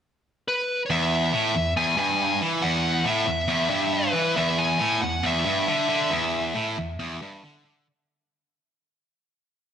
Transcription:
0.48 0.81 B4 medium
0.86 0.90 C#5 medium
0.90 1.33 E2 loud
0.90 1.73 E5 loud
1.33 1.54 A2 loud
1.55 1.72 E2 medium
1.77 1.97 E2 loud
1.77 1.98 G#5 medium
1.97 2.40 G2 loud
1.97 2.39 G#5 loud
2.41 2.62 E3 loud
2.61 3.05 E2 loud
2.61 3.03 F#5 loud
3.04 3.27 A2 loud
3.04 3.96 E5 medium
3.27 3.45 E2 medium
3.48 3.70 E2 loud
3.70 4.14 G2 loud
3.93 4.38 B4 loud
4.13 4.35 E3 loud
4.35 4.79 E2 loud
4.35 4.59 E5 loud
4.58 5.01 G#5 loud
4.78 5.01 A2 loud
5.02 5.20 E2 medium
5.02 5.22 F#5 loud
5.23 5.45 E2 loud
5.23 7.40 E5 medium
5.45 5.67 G2 loud
5.68 5.88 D3 loud
5.90 6.11 D3 loud
6.10 6.54 E2 loud
6.55 6.76 A2 loud
6.77 6.95 E2 medium
6.99 7.20 E2 loud
7.22 7.43 G2 loud
7.43 7.64 D3 loud
7.65 7.86 D3 loud

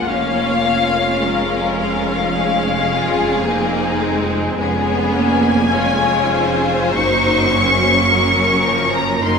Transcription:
0.00 1.23 A#3 medium
0.08 4.54 F1 medium
0.08 4.54 F2 medium
0.08 0.64 C#4 medium
0.08 2.31 F4 medium
0.08 1.23 C#5 medium
0.08 1.79 F5 loud
0.65 3.41 C#4 medium
1.23 2.34 G#3 medium
1.23 2.35 A#4 medium
1.80 3.98 F5 loud
2.35 3.43 G#3 medium
2.35 4.57 G#4 medium
2.92 3.46 F4 medium
3.45 4.01 A#3 medium
3.45 4.55 C4 medium
3.45 4.58 D#4 medium
4.01 4.56 G#3 medium
4.57 6.91 F1 medium
4.57 6.90 F2 medium
4.57 5.13 G#3 medium
4.57 5.72 B3 medium
4.57 5.70 C#4 medium
4.57 5.70 G#4 medium
4.57 6.91 G#5 loud
5.14 5.72 A#3 medium
5.71 6.94 G#3 medium
5.71 6.91 C#4 medium
5.71 6.92 F4 medium
5.71 6.33 C#5 medium
6.32 8.10 C5 medium
6.93 9.21 F#1 medium
6.93 9.21 F#2 medium
6.93 8.08 F#3 medium
6.93 9.23 A#3 medium
6.93 7.53 D#4 medium
6.93 8.91 C#6 loud
7.53 8.07 C#4 medium
8.08 8.66 F#3 medium
8.08 9.22 C#4 medium
8.08 9.22 A#4 medium
8.66 9.24 F3 medium
8.96 9.25 A#5 loud
9.23 9.39 F#1 medium
9.23 9.39 F#2 medium
9.23 9.39 D#3 medium
9.23 9.39 A#3 medium
9.23 9.39 D#4 medium
9.23 9.39 A#4 medium
9.23 9.39 C6 loud

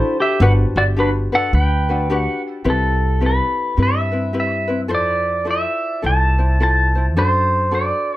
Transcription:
0.00 0.41 D4 medium
0.00 0.16 E4 medium
0.00 0.41 F#4 medium
0.00 0.40 A4 medium
0.00 0.20 C5 medium
0.00 0.42 C5 medium
0.20 0.39 G4 medium
0.20 0.42 E5 medium
0.40 0.63 G1 loud
0.40 0.96 D4 medium
0.40 0.97 F#4 medium
0.40 0.96 G4 medium
0.40 0.51 B4 medium
0.40 0.98 B4 medium
0.40 0.52 F#5 medium
0.76 1.26 G1 medium
0.76 0.83 F#4 medium
0.76 0.83 D5 medium
0.96 1.32 D4 medium
0.96 1.09 D4 medium
0.96 1.31 F#4 medium
0.96 1.32 G4 medium
0.96 1.31 B4 medium
0.96 1.09 B4 medium
1.32 1.89 D4 soft
1.32 1.88 F#4 soft
1.32 1.53 A4 medium
1.32 1.89 B4 medium
1.32 1.55 F#5 medium
1.53 2.26 D2 medium
1.53 2.42 B4 medium
1.53 2.14 G5 medium
1.89 2.09 D4 soft
1.89 2.10 F#4 soft
1.89 2.09 B4 medium
2.10 2.64 D4 medium
2.10 2.65 F#4 medium
2.10 2.64 G4 medium
2.10 2.65 B4 medium
2.14 2.42 F#5 medium
2.64 3.39 C2 medium
2.64 3.21 C4 medium
2.64 3.21 E4 medium
2.64 3.19 G4 medium
2.64 3.21 B4 medium
2.70 3.25 A4 medium
3.21 3.77 C4 soft
3.21 3.78 E4 medium
3.21 3.76 G4 soft
3.21 3.78 B4 soft
3.26 3.82 B4 medium
3.77 4.91 G2 medium
3.77 4.12 C4 medium
3.77 4.12 E4 soft
3.77 4.13 G4 soft
3.77 4.10 B4 medium
3.83 4.38 E5 medium
4.12 4.33 C4 soft
4.12 4.33 E4 soft
4.12 4.33 B4 soft
4.33 4.68 C4 medium
4.33 4.68 E4 medium
4.33 4.69 G4 medium
4.33 4.66 B4 medium
4.40 4.80 E5 medium
4.68 4.89 C4 soft
4.68 4.88 E4 soft
4.68 4.88 B4 soft
4.88 5.64 F2 medium
4.88 5.44 E4 medium
4.88 5.46 F4 medium
4.88 5.44 A4 medium
4.88 5.46 C5 medium
4.95 5.45 D5 medium
5.45 6.02 E4 medium
5.45 6.03 F4 soft
5.45 6.02 A4 soft
5.45 6.04 C5 medium
5.51 6.07 E5 medium
6.02 7.16 C2 medium
6.02 6.39 E4 medium
6.02 6.37 F4 medium
6.02 6.39 A4 soft
6.02 6.37 C5 medium
6.06 6.62 A5 medium
6.38 6.59 E4 soft
6.38 6.60 F4 soft
6.38 6.60 C5 soft
6.60 6.96 E4 medium
6.60 6.96 F4 medium
6.60 6.96 A4 medium
6.60 6.94 C5 medium
6.60 7.05 A5 medium
6.95 7.17 E4 soft
6.95 7.16 F4 soft
6.95 7.16 C5 soft
7.16 7.90 F#2 medium
7.16 7.71 D4 medium
7.16 7.71 F#4 medium
7.16 7.70 A4 medium
7.16 7.72 C5 medium
7.16 7.74 C5 medium
7.71 8.17 D4 soft
7.71 8.17 F#4 soft
7.71 8.17 A4 medium
7.71 8.17 C5 medium
7.71 8.17 D5 medium

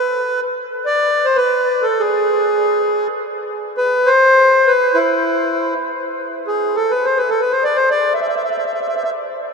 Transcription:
0.00 0.40 B4 medium
0.86 1.26 D5 medium
1.25 1.37 C5 medium
1.36 1.86 B4 medium
1.82 2.02 A4 medium
2.00 3.07 G#4 medium
3.77 4.10 B4 medium
4.06 4.72 C5 loud
4.67 4.98 B4 medium
4.94 5.74 E4 medium
6.47 6.76 G#4 medium
6.75 6.92 A4 medium
6.91 7.06 B4 medium
7.05 7.18 C5 medium
7.17 7.30 B4 medium
7.29 7.41 A4 medium
7.41 7.52 B4 medium
7.52 7.64 C5 medium
7.64 7.77 D5 medium
7.76 7.89 C5 medium
7.91 8.13 D5 medium
8.14 8.20 E5 medium
8.21 8.27 E5 medium
8.28 8.35 E5 medium
8.36 8.42 E5 soft
8.44 8.49 E5 medium
8.51 8.57 E5 medium
8.58 8.64 E5 medium
8.66 8.72 E5 soft
8.73 8.80 E5 medium
8.81 8.87 E5 soft
8.88 8.95 E5 medium
8.96 9.02 E5 soft
9.04 9.10 E5 medium

